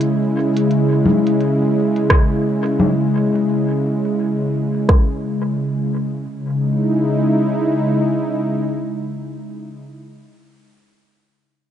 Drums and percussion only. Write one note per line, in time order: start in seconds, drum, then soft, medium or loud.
0.01 closed hi-hat soft
0.57 closed hi-hat medium
0.71 closed hi-hat soft
1.06 low conga medium
1.27 closed hi-hat soft
1.41 closed hi-hat soft
1.96 closed hi-hat soft
2.10 kick loud
2.10 cross-stick medium
2.10 closed hi-hat soft
2.66 closed hi-hat soft
2.80 closed hi-hat soft
2.80 low conga medium
3.36 closed hi-hat soft
3.50 closed hi-hat soft
4.05 closed hi-hat soft
4.19 closed hi-hat soft
4.75 closed hi-hat soft
4.89 kick medium
4.89 cross-stick medium
5.45 closed hi-hat soft
5.59 closed hi-hat soft
6.15 closed hi-hat soft